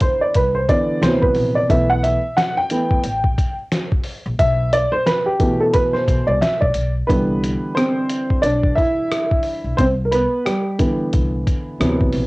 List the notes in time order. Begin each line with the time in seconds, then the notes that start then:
Already playing: D3 E3 B3
0.00 C5, kick, closed hi-hat
0.21 D5
0.34 C2 B4, kick, closed hi-hat
0.55 C5
0.68 D3 E3 B3 D5, kick, closed hi-hat
1.01 D2 C3 E3 F#3 B3 C5, snare, closed hi-hat
1.22 B4, kick
1.35 A#1, open hi-hat
1.55 D5
1.69 B1 E3 A3 B3 E5, kick, closed hi-hat
1.90 F#5
2.03 E5, closed hi-hat
2.37 F#5, snare, closed hi-hat
2.57 G5
2.70 E3 A3 B3, closed hi-hat
2.91 kick
3.04 A1, closed hi-hat
3.24 kick
3.38 kick, closed hi-hat
3.72 snare, closed hi-hat
3.92 kick
4.04 open hi-hat
4.26 A#1
4.39 B1 E5, kick, closed hi-hat
4.73 D5, closed hi-hat
4.92 C5
5.06 B4, snare, closed hi-hat
5.26 G4
5.39 B2 E3 A3, kick, closed hi-hat
5.60 A4
5.73 B4, kick, closed hi-hat
5.93 C5, snare
6.08 B1, kick, closed hi-hat
6.27 C2 D5
6.41 E5, snare, closed hi-hat
6.61 B1 D5, kick
6.74 B1, closed hi-hat
7.07 C2 D3 E3 G3 B3 B4, kick, closed hi-hat
7.43 closed hi-hat
7.75 C4 C5, cross-stick, closed hi-hat
8.10 closed hi-hat
8.30 kick
8.42 B1 D4 D5, closed hi-hat
8.63 kick
8.75 E4 E5, kick, closed hi-hat
9.12 cross-stick, closed hi-hat
9.31 kick
9.43 open hi-hat
9.64 B1
9.77 C2 C4 C5, kick, closed hi-hat
10.05 A#4
10.12 B3 B4, closed hi-hat
10.45 G3 G4, cross-stick, closed hi-hat
10.78 D3 E3 B3, kick, closed hi-hat
11.13 C2, kick, closed hi-hat
11.47 kick, closed hi-hat
11.80 D2 C3 E3 F#3 B3, cross-stick, closed hi-hat
12.01 kick
12.12 A#1, open hi-hat